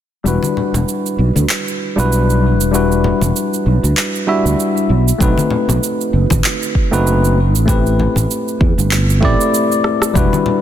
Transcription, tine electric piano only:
0.24 G3 D4 E4 F#4 B4
1.96 G3 D4 E4 F#4 B4
2.71 G3 D4 E4 F#4
2.75 B4
4.27 G3 D4 E4 F#4 E5
5.18 A3 C4 D#4 F#4
5.22 B4
6.91 A3 C4 D#4 F#4 B4
7.66 A3 C4 E4 G4 B4
9.21 A3 C4 E4 G4
9.25 D5
10.14 G3 D4 E4 F#4 B4

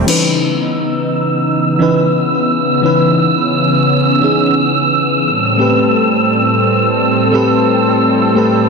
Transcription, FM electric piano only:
Already playing: A3 G4
0.05 E3 C#4 D#4 B4
1.79 E3 C#4 D#4 B4
2.82 E3 C#4 D#4 B4
4.20 E3 C#4 D#4 G#4
5.57 A3 C4 G4
5.61 B4
7.31 A3 C4 G4 B4
8.34 A3 C4 G4 B4

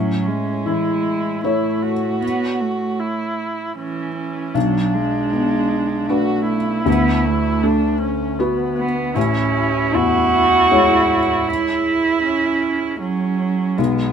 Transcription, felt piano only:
Already playing: A2
0.66 E3
1.44 A3 E4 C#5
4.54 B1
5.33 B3
6.09 D4 B4
6.86 D2
7.63 A3
8.40 F#4 B4
9.16 A1
9.94 E2
10.71 G#3 E4 C#5
13.78 B1

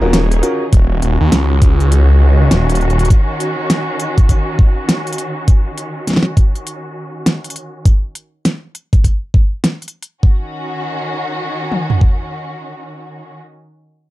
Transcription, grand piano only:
0.02 C#4 F4 F#4 A#4
0.43 C#4 F4 F#4 A#4

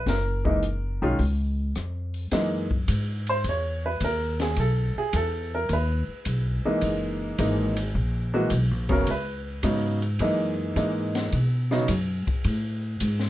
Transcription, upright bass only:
0.06 F#1
1.02 B1
1.19 C#2
1.76 F2
2.32 F#2
2.88 G#2
3.44 E2
4.01 D#2
4.57 B1
4.96 muted upright bass stroke
5.13 E2
5.69 D#2
6.08 muted upright bass stroke
6.26 B1
6.65 muted upright bass stroke
6.82 F#1
7.39 G#1
7.95 A#1
8.51 B1
8.71 A#1
8.89 F#1
9.07 C#2
9.63 G#2
10.20 F#2
10.76 G#2
11.32 B2
11.88 F#2
12.27 muted upright bass stroke
12.45 A2
13.01 G#2

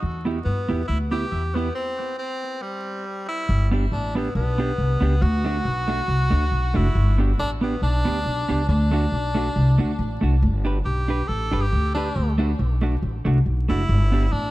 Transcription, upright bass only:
0.02 E2
0.45 G2
0.69 E2
0.89 D2
1.32 E2
3.49 G1
3.92 A1
4.35 B1
4.78 C2
5.02 C#2
5.22 D2
5.65 B1
6.08 C2
6.32 D2
6.52 B1
6.75 F#1
6.95 G1
7.39 A1
7.82 B1
8.05 D2
8.26 B1
8.49 C#2
8.69 D2
9.12 B1
9.56 C2
9.79 D2
9.99 A1
10.23 C2
10.42 G1
10.85 B1
11.29 A1
11.52 G1
11.72 D2
12.16 D2
12.59 B1
13.02 A1
13.26 C2
13.46 B1
13.69 F#1
13.89 G1
14.33 A1

